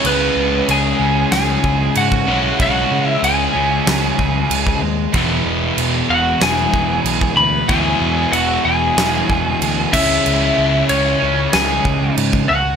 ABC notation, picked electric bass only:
X:1
M:4/4
L:1/8
Q:1/4=94
K:C#m
V:1 name="Picked electric bass" clef=bass
C,, C,, C,, C,, C,, C,, G,, B,,, | B,,, C, C,, C,, C,, C,, C,, D,, | E,,, E,,, E,,, E,,, E,,, E,,, B,,, =D,, | =D,, E,, E,,, E,,, E,,, E,,, D,, C,, |
C,, C,, C,, C,, C,, C,, G,, C,, |]